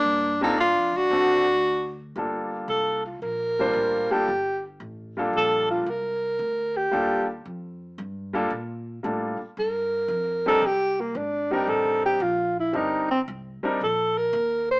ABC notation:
X:1
M:4/4
L:1/8
Q:"Swing" 1/4=114
K:Gm
V:1 name="Alto saxophone"
B, C D D4 z | z2 A F B3 G- | G z3 A F B2- | B G2 z4 z |
z4 B3 A | G B, D G A G F =E | E C z2 A B2 c |]
V:2 name="Tenor saxophone"
D E F ^F4 z | z8 | z8 | z8 |
z8 | z8 | z8 |]
V:3 name="Grand piano"
z [G,B,DFA] z2 [A,CD^FA] z3 | [G,B,DFA]3 z2 [G,B,DFc]2 [G,B,DFA] | z3 [G,B,DFA]3 z2 | z2 [G,B,DFA] z4 [G,B,DFA] |
z2 [G,B,DFA] z4 [G,CDEB] | z3 [G,CDEB]3 z2 | [G,CDEB] z2 [G,CDEB] z4 |]
V:4 name="Upright bass" clef=bass
G,,2- (3G,, F,, ^C,, D,,4 | G,,,2 C,,2 B,,,2 A,,, z | G,,,2 A,,,2 B,,,2 C,,2 | D,,2 E,,2 F,,2 G,,2 |
B,,2 A,, z G,,2 F,,2 | C,,2 _A,,,2 =A,,,2 B,,,2 | G,,,2 C,, z B,,,2 E,,2 |]